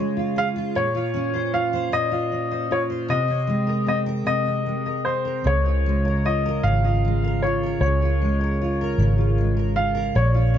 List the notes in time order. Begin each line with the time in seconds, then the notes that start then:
Already playing: C#3 G#3 F4 G#4 C#5
0.17 F4
0.36 G#4 F5
0.56 F4
0.75 A#2 C#5
0.95 F4
1.14 C#4
1.34 C5
1.54 F4 F5
1.73 C5
1.92 A#2 D#5
2.12 F4
2.32 C#4
2.51 C5
2.71 F4 C#5
2.90 C5
3.08 C3 D#5
3.28 C4
3.47 G#3
3.67 A#4
3.87 C4 D#5
4.06 A#4
4.26 C3 D#5
4.46 C4
4.66 G#3
4.86 A#4
5.05 C4 C5
5.25 A#4
5.44 C#2 C#3 C#5
5.66 F4
5.86 G#3
6.05 A#4
6.25 F4 D#5
6.46 A#4
6.63 G#1 C#3 F5
6.84 F4
7.05 G#3
7.24 A#4
7.43 F4 C#5
7.63 A#4
7.81 C#2 C#3 C#5
8.02 F4
8.22 G#3
8.41 A#4
8.62 F4
8.81 A#4
8.98 G#1 C#3
9.18 F4
9.38 G#3
9.57 A#4
9.76 F4 F5
9.95 A#4
10.15 A#1 A#2 C#5
10.34 F4
10.54 C#4